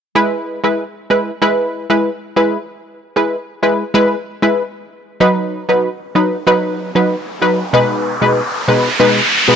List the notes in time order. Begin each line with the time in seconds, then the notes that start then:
0.15 G#3 E4 B4
0.64 G#3 E4 B4
1.10 G#3 E4 B4
1.42 G#3 E4 B4
1.90 G#3 E4 B4
2.36 G#3 E4 B4
3.16 G#3 E4 B4
3.63 G#3 E4 B4
3.94 G#3 E4 B4
4.42 G#3 E4 B4
5.20 F#3 D#4 B4, riser
5.69 F#3 D#4 B4
6.15 F#3 D#4 B4
6.47 F#3 D#4 B4
6.95 F#3 D#4 B4
7.42 F#3 D#4 B4
7.73 B2 G#3 D#4 B4
8.21 B2 G#3 D#4 B4
8.68 B2 G#3 D#4 B4
8.99 B2 G#3 D#4 B4
9.48 B2 G#3 D#4 B4